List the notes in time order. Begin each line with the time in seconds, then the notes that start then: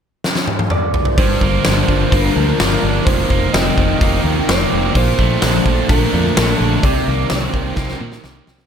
0.24 snare
0.35 snare
0.47 high tom
0.59 high tom
0.70 D5, mid tom
0.94 floor tom
1.05 floor tom
1.18 G1 G2 G3 D4 F4 A#4 C5, kick, open hi-hat
1.41 G1 D3 A#3, kick
1.65 G1 D3 D4, snare, open hi-hat
1.88 G1 F3, kick
2.11 G1 A#3 D4 A#4, kick, open hi-hat
2.36 D2 F3
2.59 G1 D3 A#3, snare, open hi-hat
2.82 G1 A#3 D4
3.05 F1 F2 F3 C4 D#4 C5, kick, open hi-hat
3.30 F1 C3 A#3, kick
3.53 F1 C3 C4 D#5, snare, open hi-hat
3.77 F1 D#3, kick
4.01 F1 A#3 D#4, kick, open hi-hat
4.24 D#2 D#3
4.48 F1 C3 A#3 D5, snare, open hi-hat
4.71 F1 A#3 C4
4.95 A#1 A#2 F3 D4 C5 A5, kick, open hi-hat
5.19 A#1 F3 A3, kick
5.42 A#1 A#2 D4, snare, open hi-hat
5.66 A#1 D3 F3, kick
5.89 A#1 A3 D4 A#4, kick, open hi-hat
6.13 F2 D3 F3
6.37 A#1 A#2 A3, snare, open hi-hat
6.55 A4
6.60 A#1 A3 D4
6.81 C2 C3 G3 C4 D#4 A#4 D5, kick, open hi-hat
7.07 C2 D#3 A#3
7.30 C2 D#3 C4 C5, snare, open hi-hat
7.53 C2 D#3 A#3, kick
7.76 C2 A#3 G4, kick, snare
7.89 snare
8.01 A#2 D#3 A#3
8.12 snare
8.24 C2 D#3 A#3, snare
8.47 C2 C4, snare
8.59 snare